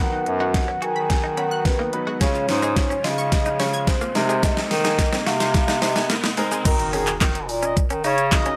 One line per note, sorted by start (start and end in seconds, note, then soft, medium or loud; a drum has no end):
0.00 0.22 D#3 loud
0.00 2.19 D#3 medium
0.00 0.87 F#3 medium
0.00 2.17 F#3 medium
0.00 0.87 B3 medium
0.00 2.19 B3 medium
0.00 0.87 D#4 medium
0.00 2.19 F#4 medium
0.00 0.88 B4 medium
0.00 0.38 F#5 loud
0.00 riser medium
0.13 0.24 D#4 medium
0.26 0.73 F#2 loud
0.26 muted clean electric guitar stroke soft
0.26 closed hi-hat medium
0.40 0.49 D#4 medium
0.40 0.52 F#4 loud
0.40 0.84 F#5 loud
0.54 0.65 D#4 medium
0.54 muted clean electric guitar stroke soft
0.54 kick loud
0.54 snare medium
0.54 closed hi-hat medium
0.68 0.77 C#4 medium
0.82 1.98 D#3 loud
0.82 0.91 F#4 medium
0.82 1.39 G#5 loud
0.82 closed hi-hat medium
0.96 1.07 B5 medium
1.10 muted clean electric guitar stroke soft
1.10 kick loud
1.10 snare medium
1.10 closed hi-hat medium
1.24 1.33 D#4 medium
1.37 1.47 C#4 medium
1.37 1.67 F#5 loud
1.37 1.49 B5 medium
1.37 closed hi-hat medium
1.51 1.63 F#6 medium
1.65 1.77 F#3 medium
1.65 2.20 B4 loud
1.65 kick loud
1.65 snare medium
1.65 closed hi-hat medium
1.79 1.88 A#3 medium
1.79 1.90 D#4 medium
1.93 2.15 F#3 medium
1.93 2.15 B3 medium
1.93 2.15 D#4 medium
1.93 2.15 B4 medium
1.93 muted clean electric guitar stroke soft
1.93 closed hi-hat medium
2.07 2.16 G#3 medium
2.07 2.18 F#4 loud
2.21 4.13 C#3 medium
2.21 2.44 C#3 loud
2.21 4.13 F3 medium
2.21 3.10 G#3 medium
2.21 4.13 G#3 medium
2.21 2.32 G#3 medium
2.21 3.10 C#4 medium
2.21 2.30 C#4 medium
2.21 4.13 F4 medium
2.21 3.10 F4 medium
2.21 2.60 C#5 loud
2.21 3.10 C#5 medium
2.21 kick loud
2.21 snare medium
2.21 closed hi-hat medium
2.21 shaker medium
2.35 2.46 F4 medium
2.35 shaker soft
2.49 2.95 G#2 loud
2.49 muted clean electric guitar stroke soft
2.49 snare medium
2.49 open hi-hat medium
2.49 shaker soft
2.62 2.72 D#4 medium
2.62 2.74 G#4 loud
2.62 3.06 C#5 loud
2.62 shaker medium
2.76 2.88 F4 medium
2.76 muted clean electric guitar stroke soft
2.76 kick loud
2.76 snare medium
2.76 closed hi-hat medium
2.76 shaker medium
2.90 3.00 C#4 medium
2.90 shaker medium
3.04 3.97 C#3 medium
3.04 3.14 F4 medium
3.04 3.61 D#5 loud
3.04 snare medium
3.04 open hi-hat medium
3.04 shaker soft
3.18 3.29 C#6 medium
3.18 shaker medium
3.32 muted clean electric guitar stroke soft
3.32 kick loud
3.32 snare medium
3.32 closed hi-hat medium
3.32 shaker medium
3.46 3.55 D#4 medium
3.46 shaker medium
3.60 3.69 C#4 medium
3.60 3.87 C#5 medium
3.60 3.71 C#6 medium
3.60 snare medium
3.60 open hi-hat medium
3.60 shaker medium
3.73 3.85 G#6 medium
3.73 shaker medium
3.87 3.99 G#3 medium
3.87 4.44 C5 medium
3.87 kick loud
3.87 snare medium
3.87 closed hi-hat medium
3.87 shaker medium
4.01 4.11 A#3 medium
4.01 4.13 F4 medium
4.01 shaker medium
4.15 6.63 C3 medium
4.15 4.62 C3 loud
4.15 5.04 G#3 medium
4.15 6.63 G#3 medium
4.15 6.63 A#3 medium
4.15 5.04 C4 medium
4.15 6.63 D#4 medium
4.15 5.04 D#4 medium
4.15 5.04 A#4 medium
4.15 muted clean electric guitar stroke soft
4.15 snare medium
4.15 open hi-hat medium
4.15 shaker medium
4.29 4.38 G#3 medium
4.29 4.40 G#4 loud
4.29 shaker medium
4.43 4.52 G#3 medium
4.43 4.54 A#3 medium
4.43 4.84 D#5 loud
4.43 kick loud
4.43 snare loud
4.43 closed hi-hat medium
4.43 shaker medium
4.57 4.68 D#4 medium
4.57 snare loud
4.57 shaker soft
4.71 5.17 D#3 loud
4.71 muted clean electric guitar stroke soft
4.71 snare loud
4.71 open hi-hat medium
4.71 shaker soft
4.85 4.94 D#4 medium
4.85 4.96 G#4 loud
4.85 5.28 D#5 loud
4.85 snare loud
4.85 shaker medium
4.98 5.10 D#4 medium
4.98 muted clean electric guitar stroke soft
4.98 kick loud
4.98 snare loud
4.98 closed hi-hat medium
4.98 shaker medium
5.13 5.22 C4 medium
5.13 snare loud
5.13 shaker medium
5.26 6.20 C3 loud
5.26 5.36 F#4 medium
5.26 5.83 F5 loud
5.26 snare loud
5.26 open hi-hat medium
5.26 shaker medium
5.40 5.51 C5 medium
5.40 snare loud
5.40 shaker medium
5.54 muted clean electric guitar stroke soft
5.54 kick loud
5.54 snare loud
5.54 closed hi-hat medium
5.54 shaker medium
5.68 5.77 D#4 medium
5.68 snare loud
5.68 shaker medium
5.82 5.91 C4 medium
5.82 5.93 C5 medium
5.82 6.10 D#5 medium
5.82 snare loud
5.82 open hi-hat medium
5.82 shaker medium
5.96 6.07 G#5 medium
5.96 snare loud
5.96 shaker medium
6.10 6.21 A#3 medium
6.10 snare loud
6.10 closed hi-hat medium
6.10 shaker medium
6.23 6.33 A#3 medium
6.23 6.35 D#4 medium
6.23 snare loud
6.23 shaker medium
6.37 6.60 G#3 medium
6.37 6.60 C4 medium
6.37 6.60 D#4 medium
6.37 6.60 A#4 loud
6.37 muted clean electric guitar stroke soft
6.37 open hi-hat medium
6.37 shaker medium
6.51 6.61 G#3 medium
6.51 6.63 G#4 loud
6.51 shaker medium
6.65 7.12 D#3 loud
6.65 6.75 D#4 medium
6.65 7.54 F#4 medium
6.65 6.87 A#4 loud
6.65 7.54 A#4 medium
6.65 kick loud
6.65 closed hi-hat medium
6.65 crash loud
6.65 impact medium
6.65 shaker medium
6.79 muted clean electric guitar stroke soft
6.79 closed hi-hat soft
6.79 shaker soft
6.93 7.02 C#4 medium
6.93 7.14 G#4 medium
6.93 open hi-hat medium
6.93 shaker medium
7.07 clap medium
7.07 closed hi-hat medium
7.07 shaker medium
7.21 7.50 D#3 loud
7.21 7.30 D#4 medium
7.21 7.32 A#4 medium
7.21 kick loud
7.21 snare loud
7.21 clap loud
7.21 closed hi-hat medium
7.21 shaker medium
7.35 muted clean electric guitar stroke soft
7.35 closed hi-hat medium
7.35 shaker medium
7.49 7.83 A#2 loud
7.49 open hi-hat medium
7.49 shaker medium
7.63 7.72 C#4 medium
7.63 7.73 D#5 medium
7.63 closed hi-hat medium
7.63 shaker medium
7.77 muted clean electric guitar stroke soft
7.77 kick loud
7.77 closed hi-hat medium
7.77 shaker medium
7.90 8.02 D#3 medium
7.90 8.00 C#4 medium
7.90 closed hi-hat medium
7.90 shaker medium
8.04 8.51 C#3 loud
8.04 8.14 D#4 medium
8.04 8.25 C#5 medium
8.04 open hi-hat medium
8.04 shaker medium
8.18 closed hi-hat medium
8.18 shaker medium
8.32 8.54 D#4 medium
8.32 8.54 F#4 medium
8.32 8.54 A#4 medium
8.32 8.56 D#5 medium
8.32 kick loud
8.32 snare medium
8.32 clap loud
8.32 closed hi-hat medium
8.32 shaker medium
8.46 8.55 C#4 medium
8.46 closed hi-hat medium
8.46 shaker medium